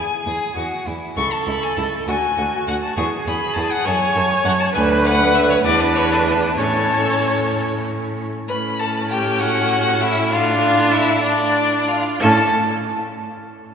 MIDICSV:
0, 0, Header, 1, 5, 480
1, 0, Start_track
1, 0, Key_signature, 3, "major"
1, 0, Tempo, 599401
1, 936, Time_signature, 6, 3, 24, 8
1, 4770, Tempo, 632244
1, 6690, Tempo, 607287
1, 8610, Tempo, 641711
1, 9570, Tempo, 616650
1, 10773, End_track
2, 0, Start_track
2, 0, Title_t, "Violin"
2, 0, Program_c, 0, 40
2, 0, Note_on_c, 0, 80, 115
2, 668, Note_off_c, 0, 80, 0
2, 932, Note_on_c, 0, 85, 116
2, 1057, Note_on_c, 0, 81, 102
2, 1069, Note_off_c, 0, 85, 0
2, 1174, Note_off_c, 0, 81, 0
2, 1179, Note_on_c, 0, 83, 103
2, 1305, Note_on_c, 0, 80, 100
2, 1317, Note_off_c, 0, 83, 0
2, 1415, Note_off_c, 0, 80, 0
2, 1419, Note_on_c, 0, 81, 104
2, 1483, Note_off_c, 0, 81, 0
2, 1662, Note_on_c, 0, 80, 127
2, 2134, Note_off_c, 0, 80, 0
2, 2144, Note_on_c, 0, 78, 110
2, 2192, Note_off_c, 0, 78, 0
2, 2263, Note_on_c, 0, 81, 102
2, 2373, Note_off_c, 0, 81, 0
2, 2378, Note_on_c, 0, 85, 120
2, 2442, Note_off_c, 0, 85, 0
2, 2618, Note_on_c, 0, 83, 105
2, 2846, Note_off_c, 0, 83, 0
2, 2851, Note_on_c, 0, 81, 113
2, 2971, Note_on_c, 0, 78, 127
2, 2983, Note_off_c, 0, 81, 0
2, 3090, Note_on_c, 0, 80, 127
2, 3102, Note_off_c, 0, 78, 0
2, 3557, Note_off_c, 0, 80, 0
2, 3562, Note_on_c, 0, 78, 122
2, 3609, Note_off_c, 0, 78, 0
2, 3680, Note_on_c, 0, 81, 127
2, 3727, Note_off_c, 0, 81, 0
2, 3799, Note_on_c, 0, 80, 127
2, 3863, Note_off_c, 0, 80, 0
2, 4038, Note_on_c, 0, 78, 127
2, 4281, Note_on_c, 0, 76, 127
2, 4293, Note_off_c, 0, 78, 0
2, 4399, Note_off_c, 0, 76, 0
2, 4403, Note_on_c, 0, 73, 123
2, 4452, Note_off_c, 0, 73, 0
2, 4524, Note_on_c, 0, 74, 127
2, 4647, Note_on_c, 0, 71, 123
2, 4659, Note_off_c, 0, 74, 0
2, 4771, Note_on_c, 0, 73, 127
2, 4782, Note_off_c, 0, 71, 0
2, 4888, Note_off_c, 0, 73, 0
2, 4893, Note_on_c, 0, 69, 110
2, 4939, Note_off_c, 0, 69, 0
2, 5008, Note_on_c, 0, 71, 104
2, 5069, Note_off_c, 0, 71, 0
2, 5247, Note_on_c, 0, 69, 125
2, 5952, Note_off_c, 0, 69, 0
2, 6688, Note_on_c, 0, 83, 114
2, 6934, Note_on_c, 0, 81, 100
2, 6946, Note_off_c, 0, 83, 0
2, 7171, Note_off_c, 0, 81, 0
2, 7175, Note_on_c, 0, 79, 111
2, 7417, Note_on_c, 0, 78, 127
2, 7429, Note_off_c, 0, 79, 0
2, 7898, Note_on_c, 0, 76, 127
2, 7910, Note_off_c, 0, 78, 0
2, 8129, Note_off_c, 0, 76, 0
2, 8134, Note_on_c, 0, 77, 127
2, 8608, Note_on_c, 0, 76, 127
2, 8620, Note_off_c, 0, 77, 0
2, 8840, Note_off_c, 0, 76, 0
2, 8844, Note_on_c, 0, 74, 127
2, 9334, Note_on_c, 0, 77, 111
2, 9345, Note_off_c, 0, 74, 0
2, 9564, Note_off_c, 0, 77, 0
2, 9569, Note_on_c, 0, 81, 127
2, 9839, Note_off_c, 0, 81, 0
2, 10773, End_track
3, 0, Start_track
3, 0, Title_t, "Viola"
3, 0, Program_c, 1, 41
3, 0, Note_on_c, 1, 68, 78
3, 569, Note_off_c, 1, 68, 0
3, 932, Note_on_c, 1, 69, 101
3, 1659, Note_on_c, 1, 66, 91
3, 1672, Note_off_c, 1, 69, 0
3, 2379, Note_off_c, 1, 66, 0
3, 2384, Note_on_c, 1, 68, 108
3, 3089, Note_on_c, 1, 73, 118
3, 3101, Note_off_c, 1, 68, 0
3, 3790, Note_off_c, 1, 73, 0
3, 3795, Note_on_c, 1, 71, 127
3, 4508, Note_off_c, 1, 71, 0
3, 4519, Note_on_c, 1, 71, 116
3, 5228, Note_off_c, 1, 71, 0
3, 5240, Note_on_c, 1, 73, 110
3, 6306, Note_off_c, 1, 73, 0
3, 6686, Note_on_c, 1, 61, 101
3, 8129, Note_on_c, 1, 62, 117
3, 8141, Note_off_c, 1, 61, 0
3, 8843, Note_off_c, 1, 62, 0
3, 8846, Note_on_c, 1, 62, 105
3, 9400, Note_off_c, 1, 62, 0
3, 9570, Note_on_c, 1, 61, 102
3, 9840, Note_off_c, 1, 61, 0
3, 10773, End_track
4, 0, Start_track
4, 0, Title_t, "Violin"
4, 0, Program_c, 2, 40
4, 209, Note_on_c, 2, 68, 83
4, 433, Note_off_c, 2, 68, 0
4, 444, Note_on_c, 2, 66, 76
4, 694, Note_on_c, 2, 64, 64
4, 706, Note_off_c, 2, 66, 0
4, 934, Note_off_c, 2, 64, 0
4, 939, Note_on_c, 2, 64, 73
4, 1003, Note_off_c, 2, 64, 0
4, 1171, Note_on_c, 2, 64, 68
4, 1235, Note_off_c, 2, 64, 0
4, 1418, Note_on_c, 2, 64, 75
4, 1482, Note_off_c, 2, 64, 0
4, 1663, Note_on_c, 2, 66, 77
4, 1727, Note_off_c, 2, 66, 0
4, 1901, Note_on_c, 2, 66, 73
4, 1965, Note_off_c, 2, 66, 0
4, 2141, Note_on_c, 2, 66, 78
4, 2205, Note_off_c, 2, 66, 0
4, 2379, Note_on_c, 2, 68, 78
4, 2443, Note_off_c, 2, 68, 0
4, 2623, Note_on_c, 2, 68, 69
4, 2687, Note_off_c, 2, 68, 0
4, 2859, Note_on_c, 2, 68, 70
4, 2923, Note_off_c, 2, 68, 0
4, 3091, Note_on_c, 2, 69, 82
4, 3155, Note_off_c, 2, 69, 0
4, 3325, Note_on_c, 2, 69, 84
4, 3389, Note_off_c, 2, 69, 0
4, 3564, Note_on_c, 2, 69, 78
4, 3628, Note_off_c, 2, 69, 0
4, 3804, Note_on_c, 2, 71, 94
4, 4495, Note_off_c, 2, 71, 0
4, 4524, Note_on_c, 2, 62, 103
4, 5245, Note_on_c, 2, 61, 89
4, 5256, Note_off_c, 2, 62, 0
4, 6532, Note_off_c, 2, 61, 0
4, 6688, Note_on_c, 2, 71, 93
4, 6751, Note_off_c, 2, 71, 0
4, 6935, Note_on_c, 2, 69, 80
4, 6998, Note_off_c, 2, 69, 0
4, 7176, Note_on_c, 2, 67, 98
4, 7417, Note_on_c, 2, 66, 111
4, 7429, Note_off_c, 2, 67, 0
4, 7902, Note_on_c, 2, 64, 105
4, 7914, Note_off_c, 2, 66, 0
4, 8138, Note_on_c, 2, 65, 112
4, 8150, Note_off_c, 2, 64, 0
4, 8614, Note_on_c, 2, 64, 116
4, 8626, Note_off_c, 2, 65, 0
4, 8842, Note_off_c, 2, 64, 0
4, 8846, Note_on_c, 2, 62, 107
4, 9329, Note_on_c, 2, 65, 90
4, 9340, Note_off_c, 2, 62, 0
4, 9570, Note_off_c, 2, 65, 0
4, 9576, Note_on_c, 2, 69, 103
4, 9843, Note_off_c, 2, 69, 0
4, 10773, End_track
5, 0, Start_track
5, 0, Title_t, "Cello"
5, 0, Program_c, 3, 42
5, 211, Note_on_c, 3, 40, 78
5, 275, Note_off_c, 3, 40, 0
5, 451, Note_on_c, 3, 40, 72
5, 515, Note_off_c, 3, 40, 0
5, 694, Note_on_c, 3, 40, 69
5, 759, Note_off_c, 3, 40, 0
5, 937, Note_on_c, 3, 37, 92
5, 1001, Note_off_c, 3, 37, 0
5, 1179, Note_on_c, 3, 37, 83
5, 1244, Note_off_c, 3, 37, 0
5, 1420, Note_on_c, 3, 37, 87
5, 1484, Note_off_c, 3, 37, 0
5, 1663, Note_on_c, 3, 38, 88
5, 1727, Note_off_c, 3, 38, 0
5, 1903, Note_on_c, 3, 38, 86
5, 1967, Note_off_c, 3, 38, 0
5, 2142, Note_on_c, 3, 38, 84
5, 2206, Note_off_c, 3, 38, 0
5, 2379, Note_on_c, 3, 40, 102
5, 2443, Note_off_c, 3, 40, 0
5, 2619, Note_on_c, 3, 40, 89
5, 2683, Note_off_c, 3, 40, 0
5, 2854, Note_on_c, 3, 40, 95
5, 2918, Note_off_c, 3, 40, 0
5, 3091, Note_on_c, 3, 42, 93
5, 3155, Note_off_c, 3, 42, 0
5, 3326, Note_on_c, 3, 42, 92
5, 3390, Note_off_c, 3, 42, 0
5, 3560, Note_on_c, 3, 42, 104
5, 3624, Note_off_c, 3, 42, 0
5, 3799, Note_on_c, 3, 38, 124
5, 4492, Note_off_c, 3, 38, 0
5, 4525, Note_on_c, 3, 40, 111
5, 5230, Note_off_c, 3, 40, 0
5, 5245, Note_on_c, 3, 45, 94
5, 6506, Note_off_c, 3, 45, 0
5, 6688, Note_on_c, 3, 45, 98
5, 9380, Note_off_c, 3, 45, 0
5, 9574, Note_on_c, 3, 45, 113
5, 9842, Note_off_c, 3, 45, 0
5, 10773, End_track
0, 0, End_of_file